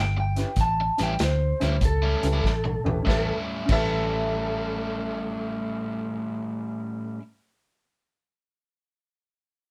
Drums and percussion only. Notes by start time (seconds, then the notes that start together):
0.36 snare, closed hi-hat
0.56 kick, snare, closed hi-hat
0.98 snare, closed hi-hat
1.19 snare, closed hi-hat
1.61 snare, closed hi-hat
1.81 kick, closed hi-hat
2.23 closed hi-hat
2.44 kick, snare
2.65 mid tom
2.86 floor tom
3.07 kick, snare
3.69 kick, crash